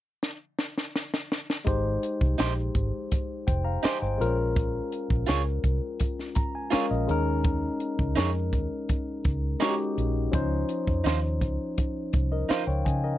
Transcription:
0.23 snare medium
0.59 snare medium
0.78 snare medium
0.96 snare medium
1.14 snare medium
1.32 snare medium
1.50 snare medium
1.64 1.96 G#1 medium
1.64 2.72 G#3 medium
1.64 2.73 D#4 medium
1.64 2.73 G4 medium
1.64 2.74 C5 medium
1.64 kick loud
1.64 closed hi-hat medium
2.03 closed hi-hat medium
2.21 2.36 C2 medium
2.21 kick medium
2.38 2.68 A#1 medium
2.38 2.52 D#4 medium
2.38 2.52 G4 medium
2.38 2.53 C5 medium
2.38 snare loud
2.38 closed hi-hat medium
2.75 2.90 G#1 medium
2.75 kick medium
2.75 closed hi-hat medium
3.12 kick medium
3.12 closed hi-hat loud
3.47 3.77 F1 medium
3.47 3.64 C5 soft
3.47 3.64 G5 medium
3.47 kick medium
3.47 closed hi-hat medium
3.64 3.82 F5 soft
3.64 3.82 A#5 medium
3.83 3.96 D#4 medium
3.83 3.97 G4 medium
3.83 3.97 C5 medium
3.83 4.01 D#5 medium
3.83 4.01 G#5 medium
3.83 muted fingered electric bass stroke soft
3.83 snare loud
3.83 closed hi-hat medium
4.02 4.17 G1 medium
4.02 4.37 C5 soft
4.02 4.36 G5 medium
4.18 4.79 A#1 medium
4.18 5.34 G#3 medium
4.18 4.26 C4 medium
4.18 5.36 F4 medium
4.18 5.36 A#4 medium
4.18 closed hi-hat medium
4.25 5.38 C#4 medium
4.56 kick loud
4.56 closed hi-hat medium
4.92 closed hi-hat medium
5.10 5.25 A#1 medium
5.10 kick medium
5.27 5.58 C#2 medium
5.27 5.41 F4 medium
5.27 5.41 G#4 medium
5.27 5.42 C#5 medium
5.27 snare medium
5.27 closed hi-hat medium
5.64 5.79 C2 medium
5.64 kick medium
5.64 closed hi-hat medium
6.00 kick medium
6.00 closed hi-hat medium
6.19 snare soft
6.35 6.53 A#5 medium
6.35 kick medium
6.35 closed hi-hat medium
6.55 6.72 G#5 medium
6.70 7.06 G#3 medium
6.70 7.07 C#4 medium
6.70 6.85 F4 medium
6.70 7.09 F4 medium
6.70 6.85 G#4 medium
6.70 7.10 A#4 medium
6.70 6.86 C#5 medium
6.70 6.89 F5 medium
6.70 muted fingered electric bass stroke soft
6.70 snare loud
6.70 closed hi-hat medium
6.91 7.06 A#1 medium
6.91 7.41 D#5 medium
7.07 7.68 D#2 medium
7.07 8.24 G#3 medium
7.07 8.24 C#4 medium
7.07 8.25 D#4 medium
7.07 8.25 A#4 medium
7.07 closed hi-hat medium
7.44 kick loud
7.44 closed hi-hat medium
7.80 closed hi-hat medium
7.99 8.14 C#2 medium
7.99 kick medium
8.15 8.53 F2 medium
8.15 8.30 D#4 medium
8.15 8.30 G#4 medium
8.15 8.30 C#5 medium
8.15 snare loud
8.15 closed hi-hat medium
8.53 8.68 D#2 medium
8.53 kick medium
8.53 closed hi-hat medium
8.89 kick medium
8.89 closed hi-hat medium
9.24 9.54 C#2 medium
9.24 kick medium
9.24 closed hi-hat medium
9.59 10.14 G#3 medium
9.59 10.14 C#4 medium
9.59 9.74 D#4 medium
9.59 10.15 D#4 medium
9.59 9.68 F#4 medium
9.59 9.74 G#4 medium
9.59 9.75 C#5 medium
9.59 snare medium
9.59 closed hi-hat medium
9.69 10.18 G4 medium
9.98 10.27 A#1 medium
9.98 closed hi-hat medium
10.31 10.63 C#2 medium
10.31 11.39 F3 medium
10.31 11.39 C#4 medium
10.31 11.40 D#4 medium
10.31 11.41 C5 medium
10.31 kick loud
10.31 closed hi-hat medium
10.69 closed hi-hat medium
10.87 11.02 F2 medium
10.87 kick medium
11.04 11.41 D#2 medium
11.04 11.18 D#4 medium
11.04 11.19 F4 medium
11.04 11.19 C5 medium
11.04 snare medium
11.04 closed hi-hat medium
11.41 11.56 C#2 medium
11.41 kick medium
11.41 closed hi-hat medium
11.78 kick medium
11.78 closed hi-hat medium
12.13 12.43 C2 medium
12.13 kick medium
12.13 closed hi-hat medium
12.32 12.49 A#4 soft
12.32 12.49 D#5 medium
12.49 12.63 D#4 medium
12.49 12.63 F4 medium
12.49 12.67 C5 soft
12.49 12.64 C5 medium
12.49 12.67 F5 medium
12.49 muted fingered electric bass stroke soft
12.49 snare loud
12.49 closed hi-hat medium
12.67 12.82 C#2 medium
12.67 12.85 C#5 medium
12.67 12.85 G5 medium
12.85 13.15 C#3 medium
12.85 13.03 D#5 soft
12.85 13.03 G#5 medium
12.85 kick medium
12.85 closed hi-hat medium
13.04 13.18 A#4 soft
13.04 13.18 D#5 medium

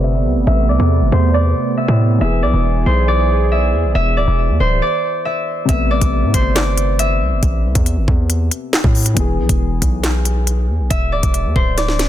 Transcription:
0.00 0.27 G1 loud
0.00 2.15 C3 medium
0.00 2.17 C3 medium
0.00 2.17 A3 medium
0.00 2.18 B3 medium
0.00 4.78 B3 medium
0.00 1.12 C5 medium
0.00 0.68 D5 medium
0.00 0.46 E5 medium
0.25 0.38 C2 loud
0.36 0.47 G1 loud
0.47 0.70 A1 loud
0.47 1.77 E5 loud
0.69 0.79 C2 loud
0.69 1.34 D5 medium
0.80 1.03 E2 loud
1.01 1.12 G1 loud
1.12 1.54 E2 loud
1.12 2.86 C5 medium
1.34 2.42 D5 medium
1.77 2.21 E5 medium
1.88 2.20 A2 loud
2.18 2.44 E1 loud
2.18 5.63 E3 medium
2.18 4.79 E3 medium
2.18 5.65 B3 medium
2.18 4.79 G#4 medium
2.18 3.51 E5 medium
2.24 5.66 G#4 medium
2.43 2.53 B1 loud
2.43 3.08 D5 medium
2.54 2.85 E1 loud
2.86 3.75 B1 loud
2.86 4.60 C5 medium
3.08 4.17 D5 loud
3.52 3.95 E5 medium
3.73 3.86 E2 loud
3.84 3.94 B1 loud
3.95 4.18 E1 loud
3.95 5.25 E5 loud
4.17 4.27 D1 loud
4.17 4.82 D5 medium
4.28 4.51 E1 loud
4.49 4.60 E2 loud
4.60 4.81 D1 loud
4.60 6.34 C5 medium
4.82 5.90 D5 medium
5.25 5.68 E5 medium
5.65 6.00 A1 loud
5.65 9.11 C3 medium
5.65 9.12 A3 medium
5.65 6.99 E5 loud
5.65 kick loud
5.65 closed hi-hat medium
5.71 9.14 B3 medium
5.91 6.55 D5 medium
6.01 6.25 A1 loud
6.01 kick loud
6.01 closed hi-hat medium
6.23 6.34 A2 loud
6.34 7.23 G1 loud
6.34 8.32 C5 medium
6.34 kick medium
6.34 closed hi-hat medium
6.56 8.40 D5 medium
6.56 snare loud
6.56 clap medium
6.56 closed hi-hat medium
6.78 closed hi-hat medium
6.99 8.72 E5 medium
6.99 closed hi-hat medium
7.21 7.33 C2 loud
7.32 7.42 G1 loud
7.43 7.66 A1 loud
7.43 kick loud
7.43 closed hi-hat medium
7.64 7.75 C2 loud
7.75 7.99 E2 loud
7.75 kick loud
7.75 closed hi-hat medium
7.86 closed hi-hat medium
7.97 8.07 G1 loud
8.08 8.50 E2 loud
8.08 kick medium
8.30 closed hi-hat medium
8.51 closed hi-hat medium
8.73 snare loud
8.73 clap medium
8.84 9.15 A2 loud
8.84 kick loud
8.95 open hi-hat medium
9.06 closed hi-hat medium
9.14 9.40 E1 loud
9.14 12.09 E3 medium
9.14 12.09 B3 medium
9.14 kick loud
9.14 closed hi-hat medium
9.20 12.09 G#4 medium
9.38 9.49 B1 loud
9.49 9.81 E1 loud
9.49 kick loud
9.49 closed hi-hat medium
9.82 10.70 B1 loud
9.82 kick medium
9.82 closed hi-hat medium
10.04 snare loud
10.04 clap medium
10.04 closed hi-hat medium
10.25 closed hi-hat medium
10.47 closed hi-hat medium
10.69 10.81 E2 loud
10.80 10.90 B1 loud
10.90 11.14 E1 loud
10.90 12.09 E5 loud
10.90 kick loud
10.90 closed hi-hat medium
11.12 11.23 D1 loud
11.12 11.77 D5 medium
11.23 11.46 E1 loud
11.23 kick loud
11.23 closed hi-hat medium
11.34 closed hi-hat medium
11.45 11.55 E2 loud
11.56 12.09 D1 loud
11.56 12.09 C5 medium
11.56 kick medium
11.78 12.09 D5 medium
11.78 snare medium
11.78 closed hi-hat medium
11.88 snare medium
11.99 snare medium
11.99 closed hi-hat medium

